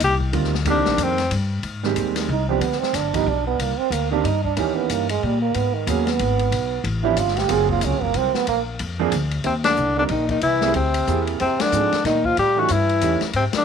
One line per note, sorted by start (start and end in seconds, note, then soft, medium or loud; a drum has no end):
0.00 0.33 C2 loud
0.00 hi-hat pedal medium
0.00 ride medium
0.04 0.15 G4 loud
0.20 kick soft
0.33 0.64 D2 loud
0.33 0.51 D#3 medium
0.33 0.51 G3 medium
0.33 0.52 A#3 medium
0.33 0.52 C4 medium
0.33 0.52 F4 medium
0.33 ride medium
0.44 snare soft
0.54 snare soft
0.65 0.76 D#2 medium
0.65 1.15 D#3 medium
0.65 1.15 G3 medium
0.65 1.15 A#3 medium
0.65 1.16 C4 medium
0.65 1.16 G4 medium
0.65 ride medium
0.70 1.05 D4 medium
0.76 0.86 C2 medium
0.85 0.96 A#1 medium
0.85 snare medium
0.97 1.30 F2 loud
0.97 hi-hat pedal medium
0.97 ride medium
1.03 1.34 C4 medium
1.18 snare soft
1.18 ride medium
1.31 1.63 G2 loud
1.31 ride medium
1.63 1.95 G#2 medium
1.63 ride medium
1.83 2.26 D#3 medium
1.83 2.27 G3 medium
1.83 2.27 G#3 medium
1.83 2.27 C4 medium
1.83 2.27 G4 medium
1.83 snare soft
1.96 2.28 D#2 medium
1.96 hi-hat pedal soft
1.96 ride medium
2.16 snare medium
2.16 ride medium
2.29 2.60 C2 medium
2.29 2.48 D#4 medium
2.49 2.60 F3 medium
2.49 2.60 G3 medium
2.49 2.61 B3 medium
2.49 2.62 C4 medium
2.49 2.61 D4 medium
2.49 2.61 G4 medium
2.61 2.80 D2 medium
2.61 2.81 B3 medium
2.61 ride medium
2.72 snare soft
2.80 2.97 C4 medium
2.80 muted upright bass stroke soft
2.80 snare soft
2.93 3.25 G1 medium
2.93 3.16 D4 medium
2.93 snare soft
2.93 hi-hat pedal medium
2.93 ride medium
3.13 3.25 F3 medium
3.13 3.26 G3 medium
3.13 3.26 B3 medium
3.13 3.26 D4 medium
3.13 3.30 D#4 loud
3.13 3.26 G4 medium
3.13 kick medium
3.13 ride medium
3.26 3.58 B1 loud
3.26 3.47 D4 medium
3.47 3.62 B3 medium
3.59 3.78 C2 medium
3.59 3.80 A#3 medium
3.59 ride medium
3.79 3.95 C4 loud
3.79 muted upright bass stroke soft
3.90 4.23 D2 loud
3.90 4.12 A#3 medium
3.90 hi-hat pedal medium
3.90 ride medium
4.11 4.23 D#3 medium
4.11 4.23 A#3 medium
4.11 4.23 C4 medium
4.11 4.27 D4 loud
4.11 4.23 D4 medium
4.11 4.24 G4 medium
4.24 4.56 G2 loud
4.24 4.44 D#4 loud
4.24 ride medium
4.45 4.59 D4 medium
4.45 kick soft
4.57 4.89 D#2 medium
4.57 5.05 E3 medium
4.57 5.05 A#3 medium
4.57 5.06 C#4 medium
4.57 4.78 C#4 medium
4.57 5.06 D#4 medium
4.57 5.06 G4 medium
4.57 ride medium
4.76 4.94 B3 medium
4.89 5.21 G2 medium
4.89 5.10 A#3 medium
4.89 hi-hat pedal medium
4.89 ride medium
5.09 5.26 G#3 medium
5.09 ride medium
5.23 5.54 A#2 medium
5.23 5.41 G3 medium
5.42 5.56 A#3 medium
5.54 5.86 G#2 medium
5.54 5.76 B3 medium
5.54 ride medium
5.75 5.90 D#3 medium
5.87 6.18 D#2 medium
5.87 6.05 F#3 medium
5.87 6.09 F#3 medium
5.87 6.05 A#3 medium
5.87 6.05 B3 medium
5.87 6.05 C#4 medium
5.87 6.06 G#4 medium
5.87 hi-hat pedal medium
5.87 ride medium
6.07 6.85 B3 loud
6.07 snare soft
6.07 ride soft
6.19 6.51 G#1 loud
6.19 ride medium
6.39 ride soft
6.51 6.83 B1 medium
6.51 ride medium
6.84 7.16 A1 loud
6.84 ride medium
7.04 7.15 F3 medium
7.04 7.15 B3 medium
7.04 7.16 C#4 medium
7.04 7.16 D4 medium
7.04 7.20 E4 loud
7.04 7.16 G4 medium
7.16 7.48 G1 loud
7.16 7.40 F4 loud
7.16 hi-hat pedal medium
7.16 ride medium
7.28 snare soft
7.37 7.54 G4 loud
7.37 snare soft
7.37 ride medium
7.48 7.81 F#1 medium
7.48 8.39 F#3 medium
7.48 8.39 A#3 medium
7.48 8.39 C4 medium
7.48 8.39 F4 medium
7.48 8.40 G#4 medium
7.48 ride medium
7.53 7.71 G#4 loud
7.69 7.87 F4 loud
7.69 kick medium
7.81 7.94 C#2 loud
7.81 8.04 C#4 medium
7.81 hi-hat pedal medium
7.81 ride medium
7.94 8.03 A#1 medium
8.01 8.14 F#1 medium
8.01 8.18 A#3 loud
8.01 kick medium
8.14 8.33 C2 loud
8.14 8.38 C4 loud
8.14 ride medium
8.34 8.48 B3 loud
8.34 muted upright bass stroke soft
8.34 snare soft
8.47 8.79 A#1 medium
8.47 8.60 A#3 loud
8.47 ride medium
8.79 9.11 F2 loud
8.79 ride medium
8.99 9.11 F3 medium
8.99 9.11 A#3 medium
8.99 9.11 C4 medium
8.99 9.11 D4 medium
8.99 9.11 G#4 loud
9.12 9.43 D2 loud
9.12 hi-hat pedal medium
9.12 ride medium
9.31 ride soft
9.44 9.76 D#2 medium
9.44 9.53 C3 medium
9.44 9.55 C4 medium
9.44 ride medium
9.64 9.95 D3 medium
9.64 9.95 D4 medium
9.64 snare medium
9.64 ride medium
9.76 10.09 C2 medium
9.76 hi-hat pedal medium
9.96 10.02 D3 medium
9.96 10.08 G3 medium
9.96 10.08 A#3 medium
9.96 10.09 C4 medium
9.96 10.04 D4 medium
9.96 10.08 D#4 medium
9.96 10.09 A#4 medium
10.09 10.41 A#1 medium
10.09 10.28 D#3 medium
10.09 10.29 D#4 medium
10.09 ride medium
10.29 10.41 D#3 medium
10.29 10.42 D#4 medium
10.29 kick soft
10.29 ride soft
10.41 10.74 C2 medium
10.41 10.72 E3 medium
10.41 10.73 E4 medium
10.41 ride medium
10.61 10.73 G3 medium
10.61 10.73 A#3 medium
10.61 10.74 C4 medium
10.61 10.74 E4 medium
10.61 10.74 G#4 medium
10.61 snare medium
10.74 11.06 D2 medium
10.74 11.23 C3 medium
10.74 11.24 C4 medium
10.74 ride medium
10.94 ride medium
11.07 11.39 E2 medium
11.07 11.40 A#3 medium
11.07 11.40 C4 medium
11.07 11.41 E4 medium
11.07 11.40 G4 medium
11.07 11.41 G#4 medium
11.07 hi-hat pedal medium
11.27 ride soft
11.40 11.58 F2 medium
11.40 11.62 C3 medium
11.40 11.63 C4 medium
11.40 ride medium
11.60 12.05 D3 medium
11.60 12.05 D4 loud
11.60 muted upright bass stroke soft
11.60 snare medium
11.60 ride medium
11.72 11.91 G#2 medium
11.72 11.90 F3 medium
11.72 11.90 G#3 medium
11.72 11.91 C4 medium
11.72 11.91 D#4 medium
11.72 11.91 G#4 medium
11.72 hi-hat pedal medium
11.92 muted upright bass stroke soft
11.92 snare soft
11.92 ride soft
12.04 12.36 A#2 medium
12.04 12.28 D#3 medium
12.04 12.27 D#4 medium
12.04 snare soft
12.04 ride medium
12.24 12.38 F3 medium
12.24 12.38 F4 loud
12.24 kick medium
12.37 12.69 A2 medium
12.37 12.61 G3 medium
12.37 12.61 G4 loud
12.37 ride medium
12.56 12.68 E3 medium
12.56 12.74 F#3 medium
12.56 12.68 A3 medium
12.56 12.68 C#4 medium
12.56 12.69 D#4 medium
12.56 12.74 F#4 medium
12.56 12.69 G4 medium
12.68 13.01 G2 medium
12.68 13.23 E3 medium
12.68 13.23 E4 loud
12.68 hi-hat pedal medium
12.68 ride medium
12.89 ride soft
13.01 13.20 E2 medium
13.01 13.19 E3 medium
13.01 13.20 A3 medium
13.01 13.20 C#4 medium
13.01 13.20 D#4 medium
13.01 13.20 G4 medium
13.01 hi-hat pedal medium
13.01 ride medium
13.21 muted upright bass stroke soft
13.21 snare soft
13.21 ride soft
13.33 13.53 G#2 medium
13.33 13.45 C3 medium
13.33 13.45 C4 medium
13.33 ride medium
13.53 13.65 D3 medium
13.53 muted upright bass stroke soft
13.53 snare medium
13.53 ride medium
13.58 13.65 D4 medium